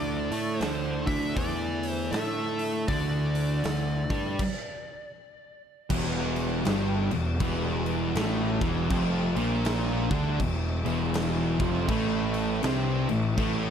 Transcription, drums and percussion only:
0.32 open hi-hat medium
0.61 snare loud
0.61 open hi-hat medium
1.07 kick loud
1.07 open hi-hat medium
1.37 kick loud
1.37 open hi-hat medium
1.83 open hi-hat medium
2.13 snare loud
2.13 open hi-hat medium
2.59 open hi-hat medium
2.88 kick loud
2.88 open hi-hat medium
3.35 open hi-hat soft
3.64 snare loud
3.64 open hi-hat medium
4.10 kick loud
4.10 open hi-hat soft
4.39 kick loud
4.39 crash loud
5.90 kick loud
5.90 crash loud
6.36 crash medium
6.65 snare loud
6.65 crash medium
7.11 crash medium
7.40 kick loud
7.40 crash medium
7.86 crash medium
8.15 snare loud
8.15 crash medium
8.61 kick loud
8.61 crash medium
8.90 kick loud
8.90 crash medium
9.36 crash medium
9.65 snare loud
9.65 crash medium
10.11 kick loud
10.11 crash medium
10.40 kick medium
10.40 crash medium
10.86 crash medium
11.14 snare loud
11.14 crash medium
11.60 kick loud
11.60 crash medium
11.88 kick loud
11.88 crash medium
12.34 crash medium
12.63 snare loud
12.63 crash medium
13.09 crash medium
13.38 kick loud
13.38 crash medium

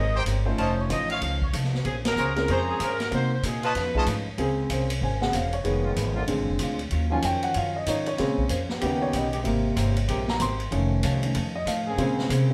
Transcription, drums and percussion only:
0.26 hi-hat pedal medium
0.26 ride medium
0.58 ride medium
0.90 hi-hat pedal soft
0.90 ride medium
1.10 ride soft
1.21 ride medium
1.42 kick medium
1.53 hi-hat pedal medium
1.53 ride medium
1.64 snare soft
1.75 snare soft
1.85 ride medium
2.05 snare medium
2.05 ride medium
2.16 hi-hat pedal medium
2.36 snare soft
2.36 ride soft
2.48 ride medium
2.80 hi-hat pedal medium
2.80 ride medium
3.00 snare medium
3.00 ride soft
3.12 ride medium
3.43 hi-hat pedal medium
3.43 ride medium
3.63 ride soft
3.75 snare soft
3.75 ride medium
3.95 kick medium
4.06 hi-hat pedal medium
4.06 ride medium
4.38 ride medium
4.70 hi-hat pedal medium
4.70 ride medium
4.90 ride medium
5.22 snare medium
5.33 hi-hat pedal medium
5.33 ride medium
5.53 ride soft
5.65 ride medium
5.96 hi-hat pedal medium
5.96 ride medium
6.28 ride medium
6.59 hi-hat pedal medium
6.59 ride medium
6.79 ride soft
6.91 ride medium
7.22 hi-hat pedal medium
7.22 ride medium
7.43 ride soft
7.54 ride medium
7.86 hi-hat pedal medium
7.86 ride medium
8.06 ride soft
8.18 snare soft
8.18 ride medium
8.38 kick medium
8.49 hi-hat pedal medium
8.49 ride medium
8.69 snare soft
8.81 ride medium
9.13 hi-hat pedal medium
9.13 ride medium
9.33 ride soft
9.45 ride medium
9.77 hi-hat pedal medium
9.77 ride medium
9.96 ride medium
10.08 ride medium
10.28 snare medium
10.40 hi-hat pedal medium
10.40 ride medium
10.60 ride soft
10.72 ride medium
11.03 hi-hat pedal medium
11.03 ride medium
11.23 ride medium
11.35 ride medium
11.67 hi-hat pedal medium
11.67 ride medium
11.98 ride medium
12.19 snare medium
12.30 hi-hat pedal medium
12.30 ride medium

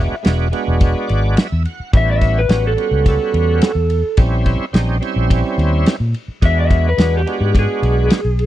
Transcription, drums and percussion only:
0.25 snare loud
0.25 ride medium
0.53 ride medium
0.81 kick medium
0.81 ride medium
1.09 ride medium
1.37 snare loud
1.37 ride medium
1.65 ride medium
1.93 kick loud
1.93 ride medium
2.21 kick medium
2.21 ride medium
2.49 snare loud
2.49 ride medium
2.78 ride medium
3.06 kick medium
3.06 ride medium
3.34 ride medium
3.62 snare loud
3.62 ride medium
3.90 ride medium
4.17 kick loud
4.17 ride medium
4.46 kick medium
4.46 ride medium
4.74 snare loud
4.74 ride medium
5.02 ride medium
5.30 kick medium
5.30 ride medium
5.59 ride medium
5.86 snare loud
5.86 ride medium
6.14 ride medium
6.42 kick loud
6.42 ride medium
6.70 kick medium
6.70 ride medium
6.98 snare loud
6.98 ride medium
7.27 ride medium
7.55 kick medium
7.55 ride medium
7.83 ride medium
8.10 snare loud
8.10 ride medium
8.39 ride medium

